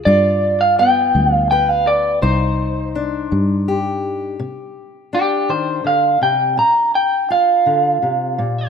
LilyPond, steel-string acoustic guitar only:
\new Staff \with { instrumentName = "Steel-string acoustic guitar" } { \clef bass \time 6/8 \key c \minor \tempo 4. = 55 << { f'4 b4 b'4 | ees'4 d'4 g'4~ | g'4 d'2 | r4 f'2 | } \\ { g,4 r8 g4 r8 | c4 r8 g4 r8 | c4 r8 ees8 d8 c8 | bes,4 r8 d8 c8 bes,8 | } >> }